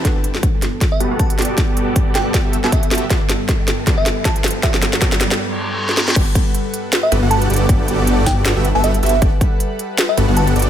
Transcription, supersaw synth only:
X:1
M:4/4
L:1/16
Q:"Swing 16ths" 1/4=157
K:G
V:1 name="Supersaw synth"
[B,FGd] z8 z [B,FGAB] [B,FGAf]3 [B,FGAd]2 | [B,FGAd]8 [B,FGAd] [B,FGAe] z [B,FGAe] z2 [B,FGAe] z | [B,FGAd] z6 z [B,FGAd] z6 z | [B,FGAd] z3 [B,FGAd] z8 z3 |
[B,FGAd] z8 z [B,FGAB] [B,FGAf]3 [B,FGAd]2 | [FA]8 [B,FGAd] [B,FGAe] z [B,FGAe] [B,FGAe] z [B,FGAe] z | [B,FGAd] z8 z [B,FGAB] [B,FGAf]3 [B,FGAd]2 |]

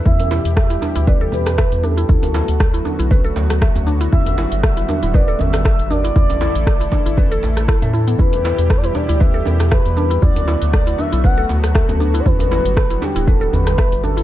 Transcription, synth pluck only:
X:1
M:4/4
L:1/16
Q:"Swing 16ths" 1/4=118
K:Em
V:1 name="Synth pluck"
E z E z2 E D E B A z2 e z D E | E z E z2 E D E B A z2 e z D E | E z E z2 E D E B A z2 e z D E | E z E z2 E D E B A z2 E e E B, |
E z E z2 E D E B A z2 e z D E | E z E z2 E D E B A z2 e z D E | E z E z2 E D E B A z2 e z D E |]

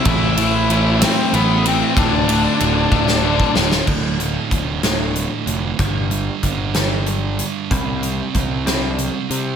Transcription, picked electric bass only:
X:1
M:6/8
L:1/8
Q:3/8=63
K:Gmix
V:1 name="Picked electric bass" clef=bass
A,,,4 A,,,2 | D,,,2 D,,, D,,,2 D,,, | D,,,2 D,,,3 F,,, | G,,,2 G,,,4 |
C,,2 C,,3 C, |]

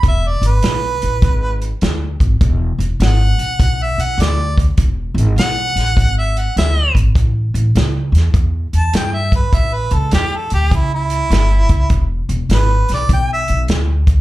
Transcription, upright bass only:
X:1
M:4/4
L:1/8
Q:"Swing" 1/4=101
K:Emix
V:1 name="Upright bass" clef=bass
E,,, G,,, B,,, A,,, G,,,2 D,, G,,, | E,,, E,,, G,,, B,,, B,,, B,,, D,,2 | E,,, G,,, B,,, A,,, G,,,2 D,, G,,, | A,,, A,,, C,, E,, E,, E,, =G,,2 |
A,,, C,, E,, D,, C,,2 =G,,, C,, | E,,, E,,, G,,, B,,, B,,, B,,, D,,2 |]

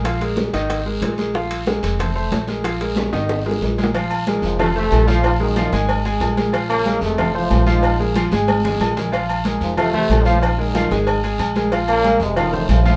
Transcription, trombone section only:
X:1
M:4/4
L:1/8
Q:1/4=185
K:Abmix
V:1 name="Trombone section" clef=bass
z8 | z8 | z8 | z3 [A,,F,] [C,=A,] [C,A,]2 [=A,,F,] |
[A,,F,] [G,,E,]4 z3 | z [D,B,]2 [C,=A,]2 [=A,,F,]2 [_A,,F,]- | [A,,F,]2 z6 | z3 [A,,F,] [C,=A,] [C,A,]2 [=A,,F,] |
[A,,F,] [G,,E,]4 z3 | z [D,B,]2 [C,A,] [=A,,E,]2 [A,,F,]2 |]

